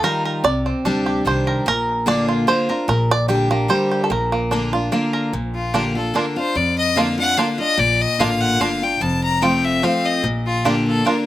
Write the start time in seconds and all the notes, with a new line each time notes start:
Already playing: D#4
0.03 D#3 G3 D#4 F4 A#4
0.25 A#4
0.44 C2 C3 D5
0.66 C4
0.85 D2 G3 D4 G4
1.06 G4
1.25 C2 D#3 G3 D4 G4 C5
1.47 A#4
1.66 A#1 A#2 A#4
2.06 D3 A#3 D4 F4 D5
2.29 F4
2.47 D3 A#3 D4 F4 C5
2.69 D4 F4 A#4
2.88 A#1 A#2 A#4
3.11 D5
3.28 D3 G3 D4 G4
3.50 A#3 D4 G4
3.68 D3 G3 D4 G4 C5
3.91 G4
4.04 A4
4.10 A#1 A#2 A#4
4.32 A#3
4.51 D3 A#3 D4 F4
4.73 D4 F4
4.92 D3 A#3 D4 F4
5.13 A#4
5.33 A#1 A#2
5.55 F4
5.74 D3 A#3 D4 F4 G4
5.95 D4 F4 A4
6.14 D3 A#3 D4 F4 A#4
6.36 D4 F4 C5
6.55 F2 D5
6.78 D#5
6.96 D3 A#3 D4 F4 F5
7.18 D4 F4 F#5
7.37 D3 A#3 D4 F4 F5
7.58 D4 F4 D#5
7.77 A#1 A#2 D5
8.01 D#5
8.19 A1 D3 A#3 D4 F4 F5
8.41 F#5
8.60 G1 D3 A#3 D4 F4 F5
8.82 D4 F4 G5
9.01 F1 F2 A5
9.23 A#5
9.41 F3 A3 C4 F4 G5
9.65 E5
9.82 F3 A3 C4 F4 F5
10.05 D#5
10.23 A#1 A#2
10.46 F4
10.65 D3 A#3 D4 F4 G4
10.87 A4
11.05 D3 A#3 D4 F4 A#4